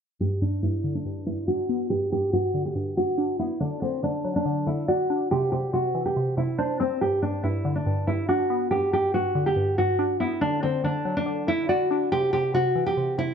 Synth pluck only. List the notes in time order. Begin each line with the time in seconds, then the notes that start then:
0.20 G2
0.41 G2
0.63 G2
0.84 D3
1.05 G2
1.26 G2
1.48 D4
1.69 B3
1.91 G2
2.12 G2
2.33 G2
2.54 D3
2.75 G2
2.97 G2
3.18 D4
3.40 B3
3.61 D3
3.82 D3
4.03 D3
4.25 F#3
4.46 D3
4.67 D3
4.88 D5
5.10 D4
5.32 C3
5.53 C3
5.73 C3
5.95 E3
6.17 C3
6.37 C3
6.59 C5
6.80 C4
7.01 G2
7.22 G2
7.44 G2
7.65 D3
7.86 G2
8.07 G2
8.29 D4
8.50 B3
8.72 G2
8.93 G2
9.14 G2
9.35 D3
9.56 G2
9.78 G2
9.99 D4
10.21 B3
10.42 D3
10.63 D3
10.84 D3
11.05 F#3
11.26 D3
11.47 D3
11.69 D5
11.91 D4
12.12 C3
12.33 C3
12.54 C3
12.75 E3
12.97 C3
13.18 C3